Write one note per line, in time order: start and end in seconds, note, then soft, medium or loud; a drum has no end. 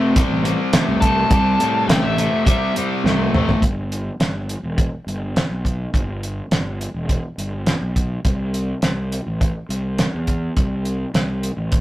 0.00 0.14 C3 medium
0.00 0.16 C3 medium
0.00 0.14 A3 medium
0.16 0.43 C3 medium
0.16 0.43 G3 loud
0.16 kick loud
0.16 closed hi-hat medium
0.30 0.54 A1 medium
0.44 0.71 C3 medium
0.44 0.71 G3 medium
0.44 closed hi-hat medium
0.73 1.01 C3 medium
0.73 1.01 A3 medium
0.73 snare loud
0.73 closed hi-hat medium
0.88 1.23 C2 medium
1.01 1.29 C3 medium
1.01 1.30 A3 medium
1.01 1.86 A5 loud
1.01 kick medium
1.01 closed hi-hat medium
1.30 1.54 C2 loud
1.30 1.58 C3 medium
1.30 1.58 G3 medium
1.30 kick loud
1.30 closed hi-hat medium
1.59 1.89 A2 medium
1.59 1.87 C3 medium
1.59 1.87 G3 medium
1.59 closed hi-hat medium
1.88 2.00 C2 medium
1.88 2.15 C3 medium
1.88 2.15 A3 medium
1.88 2.03 G5 medium
1.88 snare loud
1.88 closed hi-hat medium
2.03 2.26 A1 loud
2.03 2.44 E5 medium
2.18 2.45 C3 medium
2.18 2.45 A3 medium
2.18 closed hi-hat medium
2.46 2.73 C3 medium
2.46 2.73 G3 loud
2.46 2.74 E5 loud
2.46 kick loud
2.46 closed hi-hat medium
2.76 3.02 C3 medium
2.76 3.02 G3 loud
2.76 closed hi-hat medium
3.04 3.27 C2 medium
3.04 3.31 C3 medium
3.04 3.31 A3 loud
3.04 snare medium
3.32 3.56 A1 medium
3.32 3.60 C3 medium
3.32 3.60 A3 medium
3.32 mid tom medium
3.49 floor tom loud
3.62 4.08 G1 medium
3.62 kick medium
3.62 closed hi-hat medium
3.92 closed hi-hat medium
4.20 4.55 G1 medium
4.20 snare medium
4.20 closed hi-hat medium
4.49 closed hi-hat medium
4.63 4.86 E1 medium
4.78 kick medium
4.78 closed hi-hat medium
5.07 5.41 G1 medium
5.07 closed hi-hat medium
5.36 snare loud
5.36 closed hi-hat medium
5.50 5.85 B1 medium
5.65 kick medium
5.65 closed hi-hat soft
5.93 6.40 G1 medium
5.93 kick medium
5.93 closed hi-hat medium
6.23 closed hi-hat soft
6.51 6.86 G1 medium
6.51 snare medium
6.51 closed hi-hat medium
6.81 closed hi-hat medium
6.94 7.18 E1 medium
7.09 kick medium
7.09 closed hi-hat medium
7.38 7.73 G1 medium
7.38 closed hi-hat medium
7.66 snare medium
7.66 closed hi-hat medium
7.81 8.16 B1 medium
7.96 kick medium
7.96 closed hi-hat medium
8.25 8.71 C2 loud
8.25 kick medium
8.25 closed hi-hat medium
8.54 closed hi-hat medium
8.82 9.18 C2 medium
8.82 snare medium
8.82 closed hi-hat medium
9.12 closed hi-hat medium
9.27 9.50 A1 medium
9.41 kick medium
9.41 closed hi-hat medium
9.69 10.04 C2 medium
9.69 closed hi-hat medium
9.98 snare medium
9.98 closed hi-hat medium
10.14 10.49 E2 medium
10.27 kick medium
10.27 closed hi-hat medium
10.57 11.03 C2 loud
10.57 kick medium
10.57 closed hi-hat medium
10.85 closed hi-hat medium
11.14 11.49 C2 medium
11.14 snare medium
11.14 closed hi-hat medium
11.43 closed hi-hat medium
11.57 11.81 A1 medium
11.72 kick medium
11.72 closed hi-hat medium